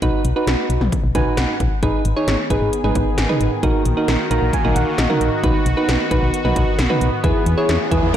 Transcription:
0.02 fm bass B1, synth keys D#4 F#4 B4, kick, closed hi-hat
0.25 fm bass B1, closed hi-hat
0.36 synth keys D#4 F#4 B4
0.47 fm bass B1, snare, closed hi-hat
0.70 fm bass B1, closed hi-hat
0.81 fm bass B1, mid tom
0.92 kick, closed hi-hat
1.04 fm bass B1
1.15 fm bass B1, synth keys D#4 F#4 B4 G#5, kick, closed hi-hat, mid tom
1.37 fm bass B1, synth keys F#5, snare, closed hi-hat
1.60 fm bass B1, kick, closed hi-hat
1.83 fm bass G#1, analog synth pad D#3 B3 G#4, synth keys D#4 G#4 B4, kick, closed hi-hat
2.05 fm bass G#1, closed hi-hat
2.17 synth keys D#4 G#4 C#5
2.28 fm bass G#1, snare, closed hi-hat
2.50 fm bass G#1, synth keys D#4 G#4 B4, kick, closed hi-hat
2.62 fm bass G#1
2.73 closed hi-hat
2.84 fm bass G#1, synth keys D#4 G#4 B4, mid tom
2.95 fm bass G#1, kick, closed hi-hat
3.18 fm bass G#1, snare, closed hi-hat
3.29 synth keys D#4 G#4 B4, mid tom
3.41 fm bass G#1, closed hi-hat
3.63 fm bass A#1, analog synth pad A#3 F#4, synth keys D#4 F#4 A#4, kick, closed hi-hat
3.85 fm bass A#1, closed hi-hat
3.97 synth keys D#4 F#4 A#4
4.08 fm bass A#1, snare, closed hi-hat
4.31 fm bass A#1, synth keys D#4 F#4 A#4 A#5, closed hi-hat
4.42 fm bass A#1
4.53 synth keys G#5, kick, closed hi-hat
4.65 fm bass A#1, synth keys D#4 F#4 A#4, mid tom
4.76 fm bass A#1, synth keys F#5, closed hi-hat
4.98 fm bass A#1, synth keys D#5, snare, closed hi-hat
5.10 synth keys D#4 F#4 A#4, mid tom
5.21 fm bass A#1, closed hi-hat
5.44 fm bass B1, analog synth pad B3, synth keys D#4 F#4 B4, kick, closed hi-hat
5.66 fm bass B1, closed hi-hat
5.77 synth keys D#4 F#4 B4
5.89 fm bass B1, snare, closed hi-hat
6.11 fm bass B1, synth keys D#4 F#4 B4, kick, closed hi-hat
6.22 fm bass B1
6.34 closed hi-hat
6.45 fm bass B1, synth keys D#4 F#4 B4, mid tom
6.56 fm bass B1, kick, closed hi-hat
6.79 fm bass B1, snare, closed hi-hat
6.90 synth keys D#4 F#4 B4, mid tom
7.01 fm bass B1, closed hi-hat
7.24 fm bass E2, analog synth pad E3 G#4, synth keys E4 G#4 B4, kick, closed hi-hat, riser
7.46 fm bass E2, closed hi-hat
7.58 synth keys E4 G#4 C#5
7.69 fm bass E2, snare, closed hi-hat
7.91 fm bass E2, synth keys E4 G#4 B4, kick, closed hi-hat
8.03 fm bass E2

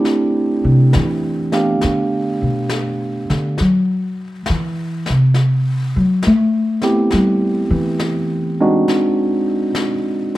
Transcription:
Already playing: tine electric piano A3 C4 D4 E4 G4
0.05 brush sweep, snare
0.64 upright bass C3
0.93 upright bass E3, snare
1.52 tine electric piano A3 B3 D4 G4 F5, snare
1.81 upright bass D3, brush sweep, snare
2.42 upright bass B2
2.69 snare
3.30 upright bass D3, snare
3.58 upright bass F#3, brush sweep, snare
4.46 upright bass E3, snare
5.06 upright bass C3, snare
5.34 brush sweep, snare
5.96 upright bass F#3
6.23 snare
6.27 upright bass A3
6.82 tine electric piano A3 B3 C4 E4 G4, snare
7.11 upright bass G3, brush sweep, snare
7.70 upright bass E3
7.99 snare
8.60 tine electric piano G#3 C4 D4 D#4 F#4
8.88 brush sweep, snare
9.75 snare

